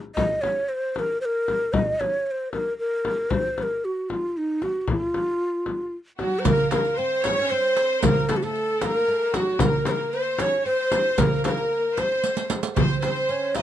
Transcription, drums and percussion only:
0.17 frame drum
0.43 frame drum
0.96 frame drum
1.48 frame drum
1.74 frame drum
2.01 frame drum
2.53 frame drum
3.05 frame drum
3.30 frame drum
3.58 frame drum
4.10 frame drum
4.62 frame drum
4.88 frame drum
5.14 frame drum
5.66 frame drum
6.19 frame drum
6.45 riq, frame drum, darbuka dum
6.71 riq, darbuka tek, frame drum
6.84 riq
6.98 riq
7.24 riq, darbuka tek, frame drum
7.77 riq, darbuka tek
8.03 riq, darbuka dum, frame drum
8.29 riq, darbuka tek, frame drum
8.42 riq
8.55 riq
8.81 riq, darbuka tek, frame drum
9.34 riq, darbuka tek, frame drum
9.59 riq, frame drum, darbuka dum
9.85 riq, darbuka tek, frame drum
10.13 riq
10.39 riq, darbuka tek, frame drum
10.92 riq, darbuka tek, frame drum
11.18 riq, darbuka dum, frame drum
11.44 riq, darbuka tek, frame drum
11.57 riq, darbuka ka
11.97 riq, darbuka tek, frame drum
12.24 riq
12.37 riq
12.50 riq, darbuka tek, frame drum
12.63 riq
12.76 riq, darbuka dum, frame drum
13.02 riq, darbuka tek, frame drum
13.16 riq
13.29 riq
13.55 riq, darbuka tek, frame drum

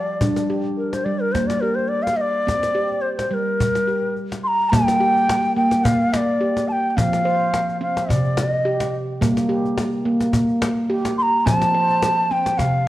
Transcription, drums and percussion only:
0.21 cajon bass
0.36 cajon slap
0.93 cajon slap
1.35 cajon bass, cajon slap
1.50 cajon slap
1.79 cajon slap
2.07 cajon slap
2.48 cajon bass, cajon slap
2.63 cajon slap
2.92 cajon slap
3.19 cajon slap
3.60 cajon bass
3.75 cajon slap
3.88 cajon slap
4.17 cajon slap
4.32 cajon slap
4.60 cajon slap
4.73 cajon bass
4.88 cajon slap
5.17 cajon slap
5.29 cajon slap
5.44 cajon slap
5.71 cajon slap
5.85 cajon bass
6.00 cajon slap
6.13 cajon slap
6.57 cajon slap
6.70 cajon slap
6.98 cajon bass
7.13 cajon slap
7.54 cajon slap
7.69 cajon slap
7.97 cajon slap
8.10 cajon bass
8.25 cajon slap
8.37 cajon slap
8.80 cajon slap
8.94 cajon slap
9.22 cajon bass
9.37 cajon slap
9.65 cajon slap
9.78 cajon slap
9.92 cajon slap
10.21 cajon slap
10.34 cajon bass
10.49 cajon slap
10.62 cajon slap
11.05 cajon slap
11.19 cajon slap
11.47 cajon bass
11.61 cajon slap
11.89 cajon slap
12.02 cajon slap
12.17 cajon slap
12.31 cajon slap
12.46 cajon slap
12.59 cajon bass, cajon slap

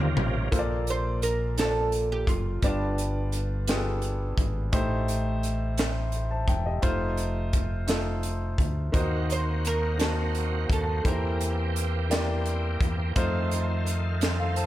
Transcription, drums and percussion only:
0.00 mid tom
0.17 mid tom
0.52 kick, closed hi-hat
0.87 closed hi-hat
1.22 closed hi-hat
1.58 snare, closed hi-hat
1.92 closed hi-hat
2.27 kick, closed hi-hat
2.62 kick, closed hi-hat
2.98 closed hi-hat
3.32 closed hi-hat
3.67 snare, closed hi-hat
4.02 closed hi-hat
4.38 kick, closed hi-hat
4.73 kick, closed hi-hat
5.08 closed hi-hat
5.43 closed hi-hat
5.78 snare, closed hi-hat
6.12 closed hi-hat
6.48 kick, closed hi-hat
6.82 kick, closed hi-hat
7.17 closed hi-hat
7.53 kick, closed hi-hat
7.88 snare, closed hi-hat
8.23 closed hi-hat
8.58 kick, closed hi-hat
8.94 kick, closed hi-hat
9.30 closed hi-hat
9.65 closed hi-hat
9.99 snare, closed hi-hat
10.35 closed hi-hat
10.70 kick, closed hi-hat
11.05 kick, closed hi-hat
11.41 closed hi-hat
11.76 closed hi-hat
12.11 snare, closed hi-hat
12.46 closed hi-hat
12.81 kick, closed hi-hat
13.16 kick, closed hi-hat
13.51 closed hi-hat
13.87 closed hi-hat
14.21 snare, closed hi-hat
14.56 closed hi-hat

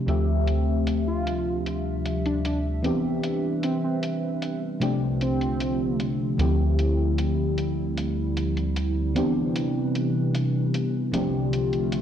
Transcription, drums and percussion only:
0.08 closed hi-hat
0.48 closed hi-hat
0.87 closed hi-hat
1.27 closed hi-hat
1.66 closed hi-hat
2.06 closed hi-hat
2.26 closed hi-hat
2.45 closed hi-hat
2.84 closed hi-hat
3.24 closed hi-hat
3.63 closed hi-hat
4.03 closed hi-hat
4.42 closed hi-hat
4.82 closed hi-hat
5.21 closed hi-hat
5.41 closed hi-hat
5.60 closed hi-hat
6.00 closed hi-hat
6.39 closed hi-hat
6.79 closed hi-hat
7.18 closed hi-hat
7.58 closed hi-hat
7.97 closed hi-hat
8.37 closed hi-hat
8.57 closed hi-hat
8.76 closed hi-hat
9.16 closed hi-hat
9.56 closed hi-hat
9.95 closed hi-hat
10.35 closed hi-hat
10.74 closed hi-hat
11.14 closed hi-hat
11.53 closed hi-hat
11.73 closed hi-hat
11.92 closed hi-hat

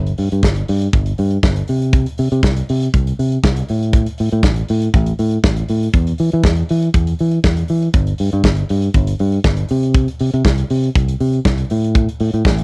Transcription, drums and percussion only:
0.07 closed hi-hat
0.18 open hi-hat
0.32 closed hi-hat
0.43 kick, snare
0.56 closed hi-hat
0.68 open hi-hat
0.82 closed hi-hat
0.93 kick, closed hi-hat
1.06 closed hi-hat
1.18 open hi-hat
1.31 closed hi-hat
1.43 kick, snare
1.56 closed hi-hat
1.68 open hi-hat
1.82 closed hi-hat
1.93 kick, closed hi-hat
2.06 closed hi-hat
2.18 open hi-hat
2.32 closed hi-hat
2.43 kick, snare
2.56 closed hi-hat
2.69 open hi-hat
2.82 closed hi-hat
2.94 kick, closed hi-hat
3.07 closed hi-hat
3.19 open hi-hat
3.32 closed hi-hat
3.43 kick, snare
3.56 closed hi-hat
3.68 open hi-hat
3.83 closed hi-hat
3.93 kick, closed hi-hat
4.06 closed hi-hat
4.18 open hi-hat
4.31 closed hi-hat
4.43 kick, snare
4.56 closed hi-hat
4.68 open hi-hat
4.82 closed hi-hat
4.94 kick, closed hi-hat
5.06 closed hi-hat
5.19 open hi-hat
5.31 closed hi-hat
5.44 kick, snare
5.56 closed hi-hat
5.68 open hi-hat
5.83 closed hi-hat
5.93 kick, closed hi-hat
6.07 closed hi-hat
6.18 open hi-hat
6.32 closed hi-hat
6.44 kick, snare
6.56 closed hi-hat
6.69 open hi-hat
6.82 closed hi-hat
6.94 kick, closed hi-hat
7.07 closed hi-hat
7.19 open hi-hat
7.31 closed hi-hat
7.44 kick, snare
7.57 closed hi-hat
7.68 open hi-hat
7.82 closed hi-hat
7.94 kick, closed hi-hat
8.07 closed hi-hat
8.18 open hi-hat
8.32 closed hi-hat
8.44 kick, snare
8.57 closed hi-hat
8.69 open hi-hat
8.82 closed hi-hat
8.94 kick, closed hi-hat
9.07 closed hi-hat
9.19 open hi-hat
9.32 closed hi-hat
9.44 kick, snare
9.57 closed hi-hat
9.69 open hi-hat
9.83 closed hi-hat
9.94 kick, closed hi-hat
10.08 closed hi-hat
10.20 open hi-hat
10.34 closed hi-hat
10.45 kick, snare
10.58 closed hi-hat
10.70 open hi-hat
10.84 closed hi-hat
10.96 kick, closed hi-hat
11.09 closed hi-hat
11.21 open hi-hat
11.33 closed hi-hat
11.45 kick, snare
11.58 closed hi-hat
11.70 open hi-hat
11.84 closed hi-hat
11.95 kick, closed hi-hat
12.09 closed hi-hat
12.20 open hi-hat
12.34 closed hi-hat
12.45 kick, snare
12.59 closed hi-hat

